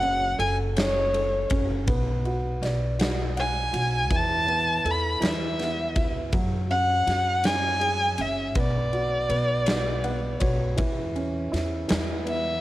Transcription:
0.00 0.36 F#1 loud
0.00 1.84 F#3 medium
0.00 0.75 C#4 soft
0.00 0.36 F#5 loud
0.00 ride soft
0.39 1.47 F#1 loud
0.39 1.13 A4 medium
0.39 0.56 G#5 medium
0.39 ride medium
0.77 1.49 C#4 medium
0.77 1.57 C#5 medium
0.77 snare loud
0.77 ride medium
1.14 1.86 A4 medium
1.14 ride medium
1.50 1.88 F#1 medium
1.50 1.87 C#4 medium
1.50 kick loud
1.50 ride medium
1.88 2.58 B1 loud
1.88 4.06 B3 medium
1.88 kick loud
1.88 ride medium
2.25 2.97 F#4 medium
2.25 ride soft
2.62 3.69 B1 medium
2.62 4.07 D5 medium
2.62 snare soft
2.62 ride medium
2.99 3.71 F#4 medium
2.99 snare medium
2.99 ride medium
3.37 4.09 F#5 medium
3.37 4.17 G#5 medium
3.37 ride soft
3.73 4.11 B1 medium
3.73 4.09 F#4 medium
3.73 ride medium
4.11 4.81 E2 medium
4.11 5.19 E3 medium
4.11 kick loud
4.11 ride medium
4.15 4.92 A5 loud
4.47 5.19 B3 medium
4.47 ride soft
4.85 5.20 E2 medium
4.85 5.21 A4 medium
4.85 ride medium
4.91 5.28 B5 medium
5.20 5.97 E2 medium
5.20 6.29 E3 medium
5.20 snare medium
5.20 ride medium
5.27 6.08 E5 medium
5.59 6.31 B3 soft
5.59 snare soft
5.59 ride soft
5.96 6.31 C#2 medium
5.96 6.32 E4 soft
5.96 kick medium
5.96 ride medium
6.33 7.04 F#2 loud
6.33 8.52 F#3 medium
6.33 kick loud
6.33 ride medium
6.70 7.42 C#4 soft
6.70 7.47 F#5 medium
6.70 ride soft
7.07 8.15 F#2 medium
7.07 8.52 F#4 medium
7.07 snare soft
7.07 ride medium
7.44 8.17 C#4 soft
7.44 8.23 G#5 loud
7.44 snare medium
7.44 ride medium
7.79 8.53 G#4 medium
7.79 ride soft
8.18 8.56 F#1 medium
8.18 8.54 C#4 medium
8.18 8.61 E5 medium
8.18 ride medium
8.55 9.26 B1 loud
8.55 9.28 B3 medium
8.55 kick loud
8.55 ride medium
8.59 10.43 D5 medium
8.92 9.65 F#4 medium
8.92 ride soft
9.29 10.37 B1 medium
9.29 10.02 B3 medium
9.29 ride medium
9.66 10.39 F#4 soft
9.66 snare loud
9.66 ride medium
10.04 10.76 B3 medium
10.04 10.39 F#5 medium
10.04 ride soft
10.40 10.77 B1 medium
10.40 10.77 F#4 medium
10.40 10.75 C#5 medium
10.40 kick medium
10.40 ride medium
10.77 11.49 E2 loud
10.77 11.86 E3 medium
10.77 kick loud
10.77 ride medium
11.16 11.88 C#4 medium
11.16 ride soft
11.52 11.88 E2 medium
11.52 11.88 E4 medium
11.52 snare soft
11.52 ride medium
11.88 12.60 E2 medium
11.88 12.61 E3 medium
11.88 snare loud
11.88 ride medium
12.25 12.61 B3 soft
12.25 ride soft
12.29 12.61 E5 medium

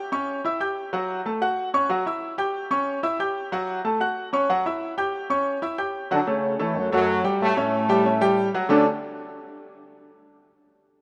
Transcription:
0.12 0.38 C#4 medium
0.12 0.39 C#5 medium
0.12 0.39 C#6 medium
0.45 0.58 E4 medium
0.45 0.58 E5 medium
0.45 0.58 E6 medium
0.60 0.87 G4 medium
0.60 0.87 G5 medium
0.60 0.87 G6 medium
0.93 1.19 F#3 medium
0.93 1.19 F#4 medium
0.93 1.20 F#5 medium
1.26 1.39 A3 medium
1.26 1.39 A4 medium
1.26 1.39 A5 medium
1.42 1.68 F#4 medium
1.42 1.68 F#5 medium
1.42 1.68 F#6 medium
1.74 1.87 C#4 medium
1.74 1.87 C#5 medium
1.74 1.87 C#6 medium
1.89 2.03 F#3 medium
1.89 2.03 F#4 medium
1.89 2.03 F#5 medium
2.06 2.33 E4 medium
2.06 2.33 E5 medium
2.06 2.33 E6 medium
2.38 2.65 G4 medium
2.38 2.65 G5 medium
2.38 2.65 G6 medium
2.71 2.97 C#4 medium
2.71 2.97 C#5 medium
2.71 2.97 C#6 medium
3.03 3.16 E4 medium
3.03 3.16 E5 medium
3.03 3.17 E6 medium
3.19 3.46 G4 medium
3.19 3.46 G5 medium
3.19 3.46 G6 medium
3.52 3.78 F#3 medium
3.52 3.79 F#4 medium
3.52 3.79 F#5 medium
3.85 3.98 A3 medium
3.85 3.98 A4 medium
3.85 3.98 A5 medium
4.00 4.27 F#4 medium
4.00 4.27 F#5 medium
4.00 4.27 F#6 medium
4.33 4.46 C#4 medium
4.33 4.46 C#5 medium
4.33 4.46 C#6 medium
4.49 4.62 F#3 medium
4.49 4.63 F#4 medium
4.49 4.63 F#5 medium
4.66 4.92 E4 medium
4.66 4.92 E5 medium
4.66 4.92 E6 medium
4.98 5.24 G4 medium
4.98 5.24 G5 medium
4.98 5.24 G6 medium
5.30 5.56 C#4 medium
5.30 5.56 C#5 medium
5.30 5.57 C#6 medium
5.62 5.75 E4 medium
5.62 5.75 E5 medium
5.62 5.76 E6 medium
5.78 6.05 G4 medium
5.78 6.05 G5 medium
5.78 6.05 G6 medium
6.11 6.19 D3 medium
6.11 6.24 F#3 medium
6.11 6.20 D4 medium
6.11 6.24 F#4 medium
6.11 6.24 F#5 medium
6.27 6.58 C#3 medium
6.27 6.53 A3 medium
6.27 6.58 C#4 medium
6.27 6.53 A4 medium
6.27 6.54 C#5 medium
6.59 6.76 E3 loud
6.59 6.86 A3 medium
6.59 6.76 E4 medium
6.59 6.86 A4 medium
6.59 6.86 C#5 medium
6.77 6.91 F#2 medium
6.77 6.91 F#3 loud
6.92 7.22 F#2 medium
6.92 7.22 F#3 loud
6.92 7.18 A3 medium
6.92 7.18 A4 medium
6.92 7.19 C#5 medium
7.24 7.50 G3 medium
7.24 7.51 G4 medium
7.24 7.51 G5 medium
7.41 7.56 A2 loud
7.41 7.56 A3 loud
7.57 8.50 A2 medium
7.57 8.50 A3 loud
7.57 7.83 C#4 medium
7.57 7.83 C#5 medium
7.57 7.83 E5 medium
7.89 8.02 G3 loud
7.89 8.02 G4 medium
7.89 8.02 G5 medium
8.05 8.18 C#4 medium
8.05 8.18 C#5 medium
8.05 8.19 E5 medium
8.21 8.47 G3 loud
8.21 8.48 G4 medium
8.21 8.48 G5 loud
8.54 8.67 F#3 medium
8.54 8.67 F#4 medium
8.54 8.67 F#5 medium
8.69 8.84 D3 medium
8.69 8.84 A3 medium
8.69 8.84 C#4 medium
8.69 8.84 D4 medium
8.69 8.85 D4 loud
8.69 8.85 F#4 medium
8.69 8.85 A4 loud

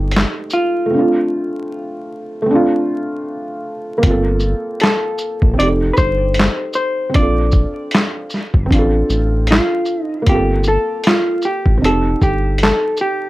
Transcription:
0.00 0.25 G1 loud
0.00 0.84 A3 medium
0.00 0.88 C4 medium
0.00 0.90 D#4 medium
0.00 0.53 G4 medium
0.00 0.92 G4 medium
0.11 closed hi-hat medium
0.17 snare loud
0.17 clap medium
0.50 2.83 F4 medium
0.50 shaker soft
0.86 2.40 A3 medium
0.90 2.43 C4 medium
0.94 2.46 D4 medium
0.99 2.48 F4 medium
2.42 3.97 A3 medium
2.46 3.99 C4 medium
2.51 4.02 D4 medium
2.55 4.04 F4 medium
3.98 5.53 A#3 medium
4.02 4.54 G1 loud
4.02 5.52 C4 medium
4.02 kick loud
4.02 closed hi-hat medium
4.06 5.58 F4 medium
4.10 5.60 A4 medium
4.40 shaker soft
4.80 5.55 A4 medium
4.80 snare loud
4.80 closed hi-hat medium
4.84 clap medium
5.18 shaker soft
5.42 5.56 A#1 loud
5.42 kick medium
5.54 7.08 C4 medium
5.58 5.92 F1 loud
5.58 7.11 D#4 medium
5.58 5.68 D5 loud
5.58 closed hi-hat medium
5.62 7.13 G4 medium
5.67 7.16 A4 medium
5.93 5.97 B4 medium
5.93 shaker medium
5.98 6.49 G1 loud
5.98 6.74 C5 loud
5.98 kick loud
6.34 closed hi-hat medium
6.40 snare loud
6.40 clap medium
6.73 7.15 C5 medium
6.73 shaker medium
7.09 8.64 C4 medium
7.14 7.66 A#1 loud
7.14 8.67 D4 medium
7.14 8.67 D5 medium
7.14 kick loud
7.14 closed hi-hat medium
7.18 8.69 F4 medium
7.22 8.71 A4 medium
7.51 kick medium
7.51 shaker soft
7.91 snare loud
7.91 closed hi-hat medium
7.96 clap medium
8.30 shaker soft
8.34 snare soft
8.54 8.68 G1 medium
8.54 kick medium
8.66 10.21 C4 medium
8.70 9.03 A1 loud
8.70 10.23 D4 medium
8.70 kick medium
8.70 closed hi-hat medium
8.74 10.25 F4 medium
8.78 10.27 A4 medium
9.10 9.60 A1 medium
9.10 shaker soft
9.47 10.04 F4 medium
9.47 closed hi-hat medium
9.52 snare loud
9.52 clap medium
9.85 shaker soft
10.04 10.24 D#4 medium
10.22 11.77 A#3 medium
10.26 10.78 G1 loud
10.26 11.76 C4 medium
10.26 10.68 G4 medium
10.26 kick loud
10.26 closed hi-hat loud
10.30 11.81 F4 medium
10.35 11.83 A4 medium
10.64 shaker soft
10.68 11.07 A4 medium
11.04 11.46 F4 medium
11.04 snare loud
11.04 closed hi-hat medium
11.08 clap medium
11.42 11.84 G4 medium
11.42 shaker soft
11.66 11.80 A1 loud
11.66 kick medium
11.78 13.29 C4 medium
11.82 12.15 F1 loud
11.82 13.29 D#4 medium
11.82 13.29 G4 medium
11.82 12.23 A4 medium
11.82 closed hi-hat medium
12.21 12.72 G1 loud
12.21 12.62 G4 medium
12.21 kick loud
12.21 shaker soft
12.58 closed hi-hat medium
12.63 13.01 A4 medium
12.63 snare loud
12.63 clap loud
12.97 shaker soft
13.01 13.29 G4 medium

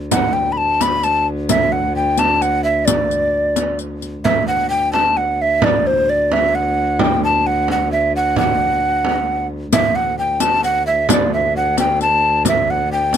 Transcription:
0.00 4.24 D2 medium
0.11 0.35 F#5 medium
0.11 riq medium
0.11 frame drum medium
0.33 0.54 G5 medium
0.33 frame drum soft
0.52 0.59 B5 medium
0.57 0.83 A5 medium
0.81 1.05 B5 loud
0.81 riq soft
0.81 frame drum medium
1.03 1.27 A5 medium
1.03 riq soft
1.49 1.74 E5 medium
1.49 riq medium
1.49 frame drum medium
1.72 1.95 F#5 medium
1.72 frame drum soft
1.96 2.20 G5 medium
2.17 2.43 A5 loud
2.17 riq soft
2.17 frame drum medium
2.42 2.63 F#5 medium
2.42 riq soft
2.64 2.87 E5 medium
2.85 3.78 D5 medium
2.85 riq medium
2.85 frame drum medium
3.11 riq soft
3.11 frame drum soft
3.56 riq soft
3.56 frame drum medium
3.79 riq soft
3.79 frame drum soft
4.02 riq soft
4.02 frame drum soft
4.24 9.72 D2 medium
4.24 4.46 E5 medium
4.24 frame drum medium
4.48 4.69 F#5 medium
4.48 frame drum soft
4.70 4.92 G5 medium
4.93 5.18 A5 medium
4.93 frame drum medium
5.17 5.43 F#5 medium
5.42 5.66 E5 loud
5.62 5.88 D5 medium
5.62 frame drum medium
5.85 6.11 C5 medium
5.85 frame drum soft
6.10 6.34 D5 medium
6.32 6.57 E5 medium
6.32 frame drum medium
6.55 7.02 F#5 medium
6.99 7.23 G5 medium
6.99 frame drum medium
7.23 7.48 A5 medium
7.23 frame drum soft
7.47 7.69 F#5 medium
7.68 7.91 F#5 medium
7.68 frame drum medium
7.92 8.13 E5 medium
8.16 8.36 F#5 medium
8.36 9.47 F#5 medium
8.36 frame drum medium
8.59 frame drum soft
8.82 frame drum soft
9.05 frame drum medium
9.72 13.17 D2 medium
9.72 9.97 E5 medium
9.72 riq medium
9.72 frame drum medium
9.95 10.18 F#5 medium
9.95 frame drum soft
10.19 10.42 G5 medium
10.40 10.64 A5 medium
10.40 riq soft
10.40 frame drum medium
10.64 10.85 F#5 loud
10.64 riq soft
10.87 11.08 E5 medium
11.09 11.32 D5 medium
11.09 riq medium
11.09 frame drum loud
11.32 11.54 E5 medium
11.32 frame drum soft
11.57 11.77 F#5 medium
11.77 11.99 G5 medium
11.77 riq soft
11.77 frame drum medium
12.01 12.43 A5 loud
12.01 riq soft
12.45 12.72 E5 medium
12.45 riq medium
12.45 frame drum medium
12.68 12.92 F#5 medium
12.68 frame drum soft
12.93 13.17 G5 medium
13.13 riq soft
13.13 frame drum medium

